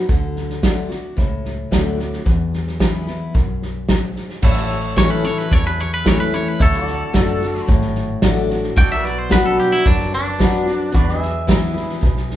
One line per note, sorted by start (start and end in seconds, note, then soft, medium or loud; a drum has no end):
0.09 0.93 D2 medium
0.09 0.61 D3 medium
0.09 kick loud
0.09 snare soft
0.36 snare soft
0.50 snare soft
0.62 0.89 D3 medium
0.62 0.89 A3 medium
0.62 0.89 D4 medium
0.62 0.88 F#4 medium
0.62 kick medium
0.62 snare medium
0.62 hi-hat pedal medium
0.89 1.17 D4 soft
0.89 1.16 F#4 soft
0.89 snare soft
1.17 1.64 C#2 medium
1.17 2.20 A2 medium
1.17 kick loud
1.17 snare soft
1.45 snare soft
1.71 2.18 D2 medium
1.71 1.97 D3 medium
1.71 1.98 A3 medium
1.71 1.98 D4 medium
1.71 1.97 F#4 medium
1.71 kick medium
1.71 snare medium
1.71 hi-hat pedal medium
1.98 2.25 D4 soft
1.98 2.25 F#4 medium
1.98 snare soft
2.13 snare soft
2.25 3.29 E2 medium
2.25 3.10 E2 medium
2.25 kick loud
2.25 snare soft
2.54 snare soft
2.67 snare soft
2.79 3.06 E3 medium
2.79 3.06 G#3 medium
2.79 3.07 B3 medium
2.79 3.05 E4 medium
2.79 kick medium
2.79 snare loud
2.79 hi-hat pedal medium
3.07 3.34 B3 soft
3.07 3.33 E4 medium
3.07 snare soft
3.34 4.19 B1 medium
3.34 3.86 F#2 medium
3.34 kick loud
3.34 snare soft
3.62 snare soft
3.89 4.41 G#2 medium
3.89 kick medium
3.89 snare medium
3.89 hi-hat pedal medium
4.16 snare soft
4.30 snare soft
4.42 5.27 A1 medium
4.42 5.46 A2 medium
4.42 6.58 E4 medium
4.42 6.59 A4 medium
4.42 6.59 C#5 medium
4.42 kick loud
4.42 snare soft
4.42 crash loud
4.56 snare soft
4.70 snare soft
4.97 5.23 E3 medium
4.97 5.24 A3 medium
4.97 5.24 C#4 medium
4.97 5.22 E4 medium
4.97 5.10 C#5 medium
4.97 kick medium
4.97 snare loud
4.97 hi-hat pedal medium
5.10 5.25 B4 medium
5.23 5.51 C#4 soft
5.23 5.50 E4 soft
5.23 5.38 C#5 medium
5.23 snare soft
5.38 5.53 B4 medium
5.38 snare soft
5.51 6.54 E2 medium
5.51 6.36 E2 medium
5.51 5.65 C#5 medium
5.51 kick loud
5.51 snare soft
5.65 5.81 B4 medium
5.65 snare soft
5.79 5.93 C#5 medium
5.79 snare soft
5.94 6.07 B4 medium
6.05 6.31 E3 medium
6.05 6.32 A3 medium
6.05 6.32 C#4 medium
6.05 6.31 E4 loud
6.05 6.20 C#5 medium
6.05 kick medium
6.05 snare loud
6.05 hi-hat pedal medium
6.20 6.34 B4 medium
6.32 6.59 C#4 soft
6.32 6.59 E4 medium
6.32 6.48 C#5 medium
6.32 snare soft
6.48 6.61 B4 medium
6.59 7.02 D2 medium
6.59 7.12 D3 medium
6.59 6.86 E4 medium
6.59 8.76 A4 medium
6.59 7.67 A4 medium
6.59 6.83 C#5 medium
6.59 kick loud
6.59 snare soft
6.73 snare soft
6.83 8.75 F#4 medium
6.83 8.76 D5 medium
6.87 snare soft
7.13 7.61 F#1 medium
7.13 7.40 D3 medium
7.13 7.40 A3 medium
7.13 7.41 D4 medium
7.13 7.40 F#4 medium
7.13 kick medium
7.13 snare loud
7.13 hi-hat pedal medium
7.41 7.68 D4 soft
7.41 7.67 F#4 medium
7.41 snare soft
7.55 snare soft
7.67 8.15 G#1 medium
7.67 8.71 A2 medium
7.67 kick loud
7.67 snare soft
7.81 snare soft
7.95 snare soft
8.22 8.69 A1 medium
8.22 8.49 D3 medium
8.22 8.49 A3 medium
8.22 8.49 D4 medium
8.22 8.48 F#4 medium
8.22 kick medium
8.22 snare loud
8.22 hi-hat pedal medium
8.49 8.77 D4 soft
8.49 8.76 F#4 medium
8.49 snare soft
8.63 snare soft
8.76 9.61 B1 medium
8.76 9.80 B2 medium
8.76 10.92 F#4 medium
8.76 9.04 A4 medium
8.76 8.91 G5 medium
8.76 kick loud
8.76 snare soft
8.80 10.94 D5 medium
8.90 9.05 E5 medium
8.90 snare soft
9.04 10.93 B4 medium
9.04 9.18 D5 medium
9.04 snare soft
9.18 9.31 C5 medium
9.29 9.82 F#3 medium
9.29 9.82 B3 loud
9.29 9.83 D4 medium
9.29 9.83 F#4 loud
9.29 9.45 B4 medium
9.29 kick medium
9.29 snare loud
9.29 hi-hat pedal medium
9.46 9.59 A4 medium
9.58 9.72 G4 medium
9.58 snare soft
9.72 9.85 E4 medium
9.72 snare soft
9.85 10.70 F#1 medium
9.85 10.89 F#2 medium
9.85 10.13 D4 medium
9.85 kick loud
9.85 snare soft
9.99 snare soft
10.13 11.19 D4 loud
10.13 snare soft
10.38 10.65 F#3 medium
10.38 10.66 B3 medium
10.38 10.66 D4 loud
10.38 10.65 F#4 medium
10.38 kick medium
10.38 snare loud
10.38 hi-hat pedal medium
10.66 10.93 D4 soft
10.66 10.92 F#4 medium
10.66 snare soft
10.92 11.96 E2 medium
10.92 11.78 E2 loud
10.92 11.20 F#4 medium
10.92 12.36 B4 medium
10.92 11.21 D5 medium
10.92 kick loud
10.92 snare soft
11.08 snare soft
11.20 12.36 G#4 medium
11.20 12.36 E5 medium
11.20 snare soft
11.47 11.74 E3 medium
11.47 11.74 G#3 medium
11.47 11.74 B3 medium
11.47 11.72 E4 medium
11.47 kick medium
11.47 snare loud
11.47 hi-hat pedal medium
11.74 12.01 B3 soft
11.74 12.01 E4 medium
11.74 snare soft
11.89 snare soft
12.01 12.36 B1 medium
12.01 12.36 B2 medium
12.01 kick loud
12.01 snare soft
12.17 snare soft
12.30 snare soft